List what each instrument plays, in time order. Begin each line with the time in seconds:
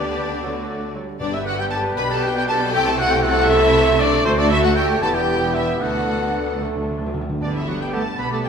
Already playing: double bass section D2, cello section D3, viola section B3 G4, french horn section B3 D4, violin section D4 D5, trumpet section G4, oboe D5, flute section D5
0.16 bassoon G3, clarinet B4
0.42 double bass section D2, cello section D3, bassoon F#3, viola section A3 F#4, french horn section B3, trumpet section F#4, clarinet A4
0.69 bassoon F#3, french horn section A3, clarinet A4
0.95 bassoon F#3, french horn section G3, clarinet A4
1.20 double bass section G1, timpani G2, cello section G2, bassoon G3, french horn section B3, viola section D4 G4, violin section D4 D5, trumpet section G4, clarinet B4, oboe D5, flute section D5
1.33 viola section B3 B4, violin section E4 E5, oboe E5, flute section E5
1.45 viola section D4 G4, violin section F#4 F#5, flute section F#5, oboe F#5
1.58 viola section B3 B4, violin section G4 G5, flute section G5, oboe G5
1.71 viola section D4 G4, violin section A4 A5, flute section A5, oboe A5
1.84 viola section B3 B4
1.96 double bass section B1, cello section B2, viola section D4 G4, violin section B4 B5, flute section B5, oboe B5
2.10 viola section B3 B4, violin section A4 A5, flute section A5, oboe A5
2.22 viola section D4 G4, violin section G4 G5, flute section G5, oboe G5
2.35 viola section B3 B4, violin section G4 G5, oboe G5, flute section G5
2.48 viola section D4 G4, violin section A4 A5, oboe A5, flute section A5
2.61 viola section B3 B4
2.73 double bass section C2, cello section C3, bassoon A3, french horn section A3 E4, viola section C4 A4, violin section G4 G5, clarinet A4, trumpet section A4, oboe G5, flute section G5
2.86 viola section A3 C5, violin section A4 A5, flute section A5, oboe A5
2.99 viola section C4 A4, violin section F#4 F#5, flute section F#5, oboe F#5
3.10 viola section A3 C5, violin section G4 G5, flute section G5, oboe G5
3.23 viola section C4 A4, violin section F#4 F#5, flute section F#5, oboe F#5
3.37 viola section A3 C5
3.48 viola section C4 A4, violin section E4 E5, flute section E5, oboe E5
3.62 viola section A3 C5
3.75 viola section C4 A4
3.87 viola section A3 C5
3.99 viola section C4 A4, violin section D4 D5, oboe D5, flute section D5
4.12 viola section A3 C5
4.24 cello section D2, double bass section D2, viola section A3 F#4, french horn section A3 F#4, violin section C4 C5, clarinet F#4, trumpet section A4, oboe C5, flute section C5
4.38 violin section D4 D5, oboe D5, flute section D5
4.50 violin section E4 E5, oboe E5, flute section E5
4.63 violin section F#4 F#5, oboe F#5, flute section F#5
4.76 violin section G4 G5, flute section G5, oboe G5
5.01 double bass section E1, cello section E2, viola section G3 G4, french horn section B3 E4, bassoon B3, clarinet E4, trumpet section G4, violin section A4 A5, flute section A5, oboe A5
5.14 violin section G4 G5, oboe G5, flute section G5
5.54 violin section E4 E5, flute section E5, oboe E5
5.81 double bass section D2, cello section D2, timpani D3, viola section A3 D4, french horn section A3 D4, clarinet D4, violin section F#4 F#5, trumpet section A4, oboe F#5, flute section F#5
5.90 timpani D3
5.98 timpani D3
6.06 timpani D3
6.13 timpani D3
6.21 timpani D3
6.29 timpani D3
6.45 timpani D3
6.54 timpani D3
6.61 timpani D3, bassoon A3
6.68 timpani D3
6.76 timpani D3
6.84 timpani D3
6.91 timpani D3
6.99 timpani D3
7.06 timpani D3
7.14 timpani D3
7.21 timpani D3
7.29 timpani D3
7.40 double bass section G1, timpani G2, viola section D3 G3, cello section D3, french horn section G3 B3, violin section B3 D4 D5, clarinet D4, trumpet section D5
7.54 cello section E3, clarinet E4, trumpet section E5, violin section E5
7.66 cello section F#3, clarinet F#4, trumpet section F#5, violin section F#5
7.80 cello section G3, clarinet G4, trumpet section G5, violin section G5
7.92 cello section A3, bassoon B3, oboe G4, clarinet A4, violin section A5, trumpet section A5
8.18 double bass section B1, viola section D3 G3, french horn section G3 B3, cello section B3, violin section B3 D4 B5, clarinet B4, trumpet section B5, flute section D6
8.31 cello section A3, clarinet A4, trumpet section A5, violin section A5
8.44 cello section G3, clarinet G4, trumpet section G5, violin section G5